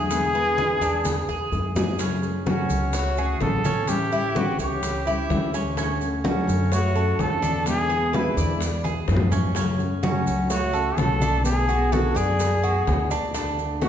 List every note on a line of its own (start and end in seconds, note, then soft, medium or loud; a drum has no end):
0.00 0.75 E2 medium
0.00 0.11 F#3 medium
0.00 0.11 A3 medium
0.00 0.10 D4 medium
0.00 0.33 G#4 medium
0.00 1.49 G#4 loud
0.10 0.33 B2 medium
0.10 0.34 D3 medium
0.10 0.34 G#3 medium
0.10 0.34 B3 medium
0.10 0.33 E4 medium
0.10 high bongo medium
0.10 high conga soft
0.10 maracas medium
0.34 1.04 D3 medium
0.34 1.04 G#3 medium
0.34 1.05 B3 medium
0.34 1.04 E4 medium
0.34 0.81 B4 medium
0.34 high conga soft
0.34 maracas soft
0.58 high bongo medium
0.58 high conga medium
0.58 maracas soft
0.81 1.25 E2 medium
0.81 1.27 D4 medium
0.81 high bongo soft
0.81 maracas medium
1.05 muted nylon-string guitar stroke medium
1.05 high bongo medium
1.05 high conga medium
1.05 maracas medium
1.28 1.51 E2 medium
1.28 1.75 G#4 medium
1.28 high bongo soft
1.28 maracas soft
1.52 2.64 F#2 medium
1.52 1.75 D3 soft
1.52 1.75 G#3 soft
1.52 1.75 B3 soft
1.52 1.74 E4 soft
1.52 high bongo medium
1.52 maracas soft
1.75 1.99 D3 medium
1.75 1.99 G#3 medium
1.75 1.99 B3 medium
1.75 1.98 E4 medium
1.75 1.99 G#4 medium
1.75 low conga medium
1.75 maracas medium
1.84 low bongo medium
1.99 2.22 C#3 medium
1.99 2.22 F#3 medium
1.99 2.22 A3 medium
1.99 2.46 C#4 medium
1.99 2.22 C#4 medium
1.99 2.21 G#4 medium
1.99 high bongo medium
1.99 high conga soft
1.99 maracas medium
2.22 2.45 A3 soft
2.22 2.46 C#4 soft
2.22 2.45 G#4 soft
2.22 high conga soft
2.22 maracas soft
2.45 2.92 C#3 medium
2.45 2.92 F#3 medium
2.45 2.93 A3 medium
2.45 2.93 C#4 medium
2.45 2.92 F#4 medium
2.45 2.93 G#4 medium
2.45 high bongo medium
2.45 high conga medium
2.45 maracas soft
2.49 2.97 C#4 medium
2.70 3.37 C#2 medium
2.70 maracas medium
2.93 3.41 A3 medium
2.93 3.41 F#4 medium
2.93 3.17 C#5 medium
2.93 muted nylon-string guitar stroke medium
2.93 high bongo medium
2.93 high conga soft
2.93 maracas medium
3.17 3.40 A3 soft
3.17 3.40 C#4 soft
3.17 3.40 G#4 soft
3.17 3.64 G#4 medium
3.17 high conga soft
3.17 maracas soft
3.40 4.53 A1 medium
3.40 3.63 C#3 medium
3.40 3.64 F#3 medium
3.40 3.64 A3 medium
3.40 3.63 C#4 medium
3.40 3.62 G#4 medium
3.40 3.90 A4 medium
3.40 high bongo medium
3.40 low bongo medium
3.40 high conga medium
3.40 maracas soft
3.64 3.88 A3 soft
3.64 4.11 C#4 medium
3.64 3.87 G#4 soft
3.64 high conga medium
3.64 maracas medium
3.87 4.11 E3 medium
3.87 4.11 G3 medium
3.87 4.11 C#4 medium
3.87 4.09 E4 medium
3.87 4.38 G4 medium
3.87 high bongo medium
3.87 high conga soft
3.87 maracas medium
4.11 4.34 G3 soft
4.11 4.35 C#4 soft
4.11 4.34 E4 soft
4.11 4.35 E4 medium
4.11 high conga soft
4.11 maracas soft
4.34 4.81 E3 medium
4.34 4.81 G3 medium
4.34 4.59 A3 medium
4.34 4.81 C#4 medium
4.34 4.82 E4 medium
4.34 4.60 F#4 medium
4.34 4.59 G4 medium
4.34 high bongo medium
4.34 high conga medium
4.34 maracas soft
4.58 5.26 C#2 medium
4.58 5.50 C#4 medium
4.58 5.50 G4 medium
4.58 5.06 C#5 medium
4.58 high bongo soft
4.58 maracas medium
4.82 muted nylon-string guitar stroke medium
4.82 high bongo medium
4.82 high conga soft
4.82 maracas medium
5.06 5.28 G3 soft
5.06 5.29 C#4 soft
5.06 5.29 E4 medium
5.06 5.53 E4 medium
5.06 high bongo soft
5.06 high conga soft
5.06 maracas soft
5.29 6.42 D2 medium
5.29 5.52 E3 medium
5.29 5.53 G3 medium
5.29 5.53 C#4 medium
5.29 5.51 E4 medium
5.29 high bongo medium
5.29 low bongo medium
5.29 high conga medium
5.29 maracas soft
5.53 5.77 G3 soft
5.53 5.77 C#4 soft
5.53 5.76 C#4 medium
5.53 5.76 E4 medium
5.53 high bongo soft
5.53 high conga soft
5.53 maracas medium
5.76 6.00 D3 medium
5.76 6.00 A3 medium
5.76 6.23 C#4 medium
5.76 6.00 C#4 medium
5.76 5.99 F#4 medium
5.76 high bongo medium
5.76 high conga soft
5.76 maracas medium
6.00 6.23 A3 soft
6.00 6.24 C#4 soft
6.00 6.23 F#4 medium
6.00 high conga soft
6.00 maracas soft
6.24 6.70 D3 medium
6.24 6.69 F#3 medium
6.24 6.71 A3 medium
6.24 6.71 C#4 medium
6.24 6.69 C#4 medium
6.24 6.70 F#4 medium
6.24 6.72 F#4 medium
6.24 high bongo medium
6.24 high conga medium
6.24 maracas soft
6.47 7.15 F#2 medium
6.47 maracas medium
6.71 7.16 A3 medium
6.71 7.22 F#4 medium
6.71 6.95 C#5 medium
6.71 muted nylon-string guitar stroke medium
6.71 high bongo medium
6.71 high conga soft
6.71 maracas medium
6.94 7.18 A3 soft
6.94 7.18 C#4 soft
6.94 7.18 F#4 medium
6.94 7.41 A4 medium
6.94 high conga soft
6.94 maracas soft
7.18 8.31 E2 medium
7.18 7.42 D3 medium
7.18 7.42 A3 medium
7.18 7.42 C#4 medium
7.18 7.41 F#4 medium
7.18 7.67 A4 loud
7.18 high bongo medium
7.18 low bongo medium
7.18 high conga medium
7.18 maracas soft
7.42 7.67 A3 soft
7.42 7.66 C#4 soft
7.42 7.89 D4 medium
7.42 7.65 F#4 soft
7.42 high conga medium
7.42 maracas medium
7.66 7.89 B2 medium
7.66 7.89 D3 medium
7.66 7.90 G#3 medium
7.66 7.90 B3 medium
7.66 7.89 E4 medium
7.66 8.17 G#4 loud
7.66 high bongo medium
7.66 high conga soft
7.66 maracas medium
7.90 8.13 G#3 soft
7.90 8.13 B3 soft
7.90 8.13 E4 soft
7.90 8.13 G#4 medium
7.90 high conga soft
7.90 maracas soft
8.13 8.59 B2 medium
8.13 8.60 D3 medium
8.13 8.60 G#3 medium
8.13 8.60 B3 medium
8.13 8.60 E4 medium
8.13 8.62 E4 medium
8.13 8.37 B4 medium
8.13 high bongo medium
8.13 high conga medium
8.13 maracas soft
8.37 9.04 E2 medium
8.37 8.83 D5 medium
8.37 high bongo soft
8.37 maracas medium
8.60 muted nylon-string guitar stroke medium
8.60 high bongo medium
8.60 high conga soft
8.60 maracas medium
8.84 9.08 G#3 soft
8.84 9.08 B3 soft
8.84 9.07 E4 medium
8.84 9.30 G#4 medium
8.84 high bongo soft
8.84 high conga medium
8.84 maracas soft
9.08 10.20 F#2 medium
9.08 9.31 B2 medium
9.08 9.31 D3 medium
9.08 9.32 G#3 medium
9.08 9.32 B3 medium
9.08 9.31 E4 medium
9.08 high bongo medium
9.08 low bongo medium
9.08 maracas soft
9.16 low conga loud
9.32 9.56 G#3 soft
9.32 9.56 B3 soft
9.32 9.54 C#4 medium
9.32 9.55 E4 medium
9.32 high bongo soft
9.32 low conga medium
9.32 maracas medium
9.55 9.78 C#3 medium
9.55 9.79 F#3 medium
9.55 9.79 A3 medium
9.55 10.02 C#4 medium
9.55 9.79 C#4 medium
9.55 9.78 F#4 medium
9.55 high bongo medium
9.55 high conga soft
9.55 maracas medium
9.79 10.03 A3 soft
9.79 10.03 C#4 soft
9.79 10.02 F#4 medium
9.79 high conga soft
9.79 maracas soft
10.02 10.49 C#3 medium
10.02 10.50 F#3 medium
10.02 10.49 A3 medium
10.02 10.48 C#4 medium
10.02 10.50 C#4 medium
10.02 10.49 F#4 medium
10.02 10.50 F#4 medium
10.02 high bongo medium
10.02 high conga medium
10.02 maracas soft
10.27 10.94 C#2 medium
10.27 maracas medium
10.50 10.97 A3 medium
10.50 10.99 F#4 medium
10.50 10.73 C#5 medium
10.50 muted nylon-string guitar stroke medium
10.50 high bongo medium
10.50 high conga soft
10.50 maracas medium
10.73 10.97 A3 soft
10.73 10.97 C#4 soft
10.73 10.97 F#4 soft
10.73 11.20 A4 medium
10.73 high conga soft
10.73 maracas soft
10.97 12.10 B1 medium
10.97 11.20 C#3 medium
10.97 11.20 F#3 medium
10.97 11.21 A3 medium
10.97 11.20 C#4 medium
10.97 11.19 F#4 medium
10.97 11.45 A4 loud
10.97 high bongo medium
10.97 low bongo medium
10.97 high conga medium
10.97 maracas soft
11.20 11.44 A3 soft
11.20 11.44 C#4 soft
11.20 11.68 D4 medium
11.20 11.44 F#4 soft
11.20 high conga medium
11.20 maracas medium
11.45 11.68 B2 medium
11.45 11.68 D3 medium
11.45 11.68 A3 medium
11.45 11.68 B3 medium
11.45 11.67 F#4 medium
11.45 11.95 G#4 medium
11.45 high bongo medium
11.45 high conga soft
11.45 maracas medium
11.68 11.92 A3 soft
11.68 11.92 B3 soft
11.68 11.91 F#4 soft
11.68 11.92 F#4 medium
11.68 high conga soft
11.68 maracas soft
11.92 12.38 B2 medium
11.92 12.38 D3 medium
11.92 12.38 A3 medium
11.92 12.39 B3 medium
11.92 12.18 F#4 medium
11.92 12.39 F#4 medium
11.92 12.15 A4 medium
11.92 high bongo medium
11.92 high conga loud
11.92 maracas soft
12.14 12.83 F#2 medium
12.14 13.10 B3 medium
12.14 13.11 G#4 medium
12.14 12.62 D5 medium
12.14 high bongo soft
12.14 maracas medium
12.39 muted nylon-string guitar stroke medium
12.39 high bongo medium
12.39 high conga soft
12.39 maracas medium
12.63 12.88 A3 soft
12.63 12.87 B3 soft
12.63 13.10 F#4 medium
12.63 12.87 F#4 medium
12.63 high bongo soft
12.63 high conga soft
12.63 maracas soft
12.87 13.89 D2 medium
12.87 13.10 B2 medium
12.87 13.11 D3 medium
12.87 13.11 A3 medium
12.87 13.11 B3 medium
12.87 13.09 F#4 medium
12.87 high bongo medium
12.87 low bongo medium
12.87 high conga medium
12.87 maracas soft
13.11 13.34 A3 soft
13.11 13.34 B3 soft
13.11 13.33 D4 medium
13.11 13.34 F#4 soft
13.11 high bongo soft
13.11 high conga soft
13.11 maracas medium
13.34 13.58 D3 medium
13.34 13.58 A3 medium
13.34 13.81 D4 medium
13.34 13.58 D4 medium
13.34 13.58 F#4 medium
13.34 high bongo medium
13.34 high conga soft
13.34 maracas medium
13.59 13.83 A3 soft
13.59 13.82 D4 soft
13.59 13.81 F#4 soft
13.59 high conga soft
13.59 maracas soft
13.81 13.89 D3 medium
13.81 13.89 A3 medium
13.81 13.89 D4 medium
13.81 13.89 F#4 medium
13.81 high bongo medium
13.81 high conga medium
13.81 maracas soft